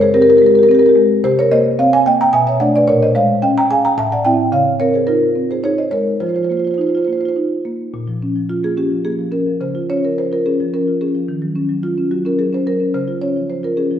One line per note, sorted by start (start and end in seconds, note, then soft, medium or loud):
0.00 1.20 C#3 medium
0.00 0.30 G#3 medium
0.00 0.14 G#4 medium
0.00 0.15 C5 loud
0.14 0.58 C4 medium
0.14 0.21 G4 medium
0.14 0.22 A#4 loud
0.21 0.29 G4 medium
0.21 0.30 A#4 medium
0.29 0.37 G4 medium
0.29 0.38 A#4 loud
0.37 0.44 G4 medium
0.37 0.46 A#4 medium
0.42 0.85 G#3 medium
0.42 0.51 G4 medium
0.46 0.55 A#4 loud
0.51 0.59 G4 medium
0.55 0.67 G4 medium
0.55 0.63 A#4 medium
0.63 0.75 G4 medium
0.63 0.71 A#4 loud
0.69 1.13 C4 medium
0.69 0.79 A#4 medium
0.75 0.82 G4 medium
0.79 0.89 G4 medium
0.79 0.86 A#4 loud
0.86 0.92 G4 medium
0.86 0.93 A#4 medium
0.96 1.24 G#3 medium
1.24 2.30 C3 medium
1.24 1.37 G4 loud
1.24 1.38 C5 loud
1.39 1.52 A#4 medium
1.39 1.52 C#5 loud
1.52 1.95 A#3 medium
1.52 1.78 C5 medium
1.52 1.78 D#5 loud
1.79 2.22 C4 medium
1.79 1.92 C#5 medium
1.79 1.92 F5 loud
1.93 2.06 F5 medium
1.93 2.06 G#5 loud
2.06 2.33 A#3 medium
2.06 2.19 D#5 medium
2.06 2.20 G5 loud
2.21 2.33 G5 loud
2.21 2.34 A#5 loud
2.33 2.86 B2 loud
2.33 2.46 E5 medium
2.33 2.47 G#5 loud
2.47 2.60 C#5 medium
2.47 2.61 E5 loud
2.60 2.85 A3 medium
2.60 2.85 D4 medium
2.60 2.74 D5 medium
2.60 2.74 F#5 loud
2.76 2.88 B4 medium
2.76 2.89 D5 loud
2.88 3.94 A#2 medium
2.88 3.01 A#4 medium
2.88 3.01 C#5 loud
3.03 3.16 C5 medium
3.03 3.16 D#5 medium
3.15 3.59 G#3 medium
3.15 3.41 C#5 medium
3.15 3.42 F5 loud
3.42 3.86 C#4 medium
3.42 3.56 D#5 medium
3.42 3.56 G5 loud
3.58 3.70 G5 medium
3.58 3.71 A#5 loud
3.71 3.98 G#4 medium
3.71 3.84 F5 medium
3.71 3.84 G#5 loud
3.85 3.98 G5 medium
3.85 3.98 A#5 loud
3.98 4.51 A2 medium
3.98 4.11 E5 medium
3.98 4.11 A5 loud
4.12 4.25 D5 medium
4.12 4.25 F#5 loud
4.25 4.49 C4 medium
4.25 4.50 E4 medium
4.25 4.51 E5 medium
4.25 4.51 G5 loud
4.52 6.17 C#3 medium
4.52 4.78 C#5 medium
4.52 4.78 F5 loud
4.80 5.24 C4 medium
4.80 4.93 A#4 medium
4.80 4.93 C#5 medium
4.94 5.07 G#4 medium
4.94 5.07 C5 medium
5.07 5.52 D#4 medium
5.07 5.47 F4 medium
5.07 5.47 A#4 medium
5.35 5.81 C4 medium
5.51 5.64 G#4 medium
5.51 5.64 C5 medium
5.63 6.09 D#4 medium
5.63 5.78 G#4 medium
5.63 5.78 C#5 medium
5.78 5.92 C5 medium
5.78 5.92 D#5 medium
5.91 6.21 G#3 medium
5.91 6.19 A#4 medium
5.91 6.19 C#5 medium
6.20 7.89 F3 medium
6.20 6.27 F4 medium
6.20 6.29 C5 medium
6.27 6.35 F4 soft
6.27 6.36 C5 medium
6.35 6.43 F4 soft
6.35 6.44 C5 medium
6.43 6.50 F4 soft
6.43 6.52 C5 medium
6.50 6.96 A#3 medium
6.50 6.57 F4 soft
6.50 6.59 C5 medium
6.57 6.65 F4 soft
6.57 6.67 C5 medium
6.65 6.71 F4 soft
6.65 6.74 C5 medium
6.71 6.79 F4 soft
6.71 6.81 C5 medium
6.78 7.24 D#4 medium
6.78 6.87 F4 soft
6.78 6.89 C5 medium
6.87 6.95 F4 soft
6.87 6.97 C5 medium
6.95 7.03 F4 medium
6.95 7.05 C5 medium
7.03 7.10 F4 soft
7.03 7.13 C5 medium
7.08 7.54 A#3 soft
7.08 7.18 F4 soft
7.13 7.21 C5 medium
7.18 7.25 F4 soft
7.18 7.29 C5 medium
7.25 7.32 F4 medium
7.25 7.32 C5 medium
7.36 7.82 D#4 medium
7.65 7.94 A#3 medium
7.94 9.58 A#2 medium
8.08 8.30 F3 medium
8.22 8.45 C#4 medium
8.36 8.81 F3 soft
8.49 8.64 F4 medium
8.63 8.86 A#3 soft
8.63 8.78 G#4 medium
8.77 9.00 C#4 medium
8.77 9.05 G4 medium
8.91 9.14 F3 soft
9.05 9.28 A#3 medium
9.05 9.32 G#4 medium
9.19 9.42 F3 soft
9.32 9.55 C#4 medium
9.32 9.60 A#4 medium
9.46 9.61 F3 soft
9.61 11.24 C#3 medium
9.61 9.88 C5 medium
9.75 9.98 F4 medium
9.90 10.12 C#4 medium
9.90 10.04 C#5 medium
10.04 10.48 F3 soft
10.04 10.18 A#4 medium
10.18 10.32 C5 medium
10.32 10.54 F4 soft
10.32 10.46 A#4 medium
10.46 10.68 C#4 medium
10.46 10.72 G#4 medium
10.60 10.82 F3 medium
10.74 10.96 C#4 soft
10.74 11.00 A#4 medium
10.88 11.09 F4 soft
11.01 11.23 C#4 soft
11.01 11.27 G#4 medium
11.15 11.29 F3 soft
11.29 12.91 D#3 medium
11.42 11.64 F#3 soft
11.56 11.78 C#4 medium
11.69 12.10 F#3 soft
11.83 12.10 F4 medium
11.98 12.20 C#4 medium
12.11 12.34 F#3 soft
12.11 12.25 F#4 medium
12.25 12.47 C#4 medium
12.25 12.40 A#4 medium
12.39 12.61 F#3 soft
12.39 12.53 G#4 medium
12.53 12.75 C#4 soft
12.53 12.68 C5 medium
12.67 12.89 F#3 soft
12.67 12.93 A#4 medium
12.80 12.94 C#4 soft
12.94 13.99 C#3 medium
12.94 13.21 C5 medium
13.08 13.30 F4 soft
13.22 13.44 C#4 medium
13.22 13.48 C#5 medium
13.36 13.80 F3 soft
13.50 13.63 C5 medium
13.63 13.85 F4 medium
13.63 13.78 A#4 medium
13.77 13.99 C#4 soft
13.77 13.99 G#4 medium
13.91 13.99 F3 soft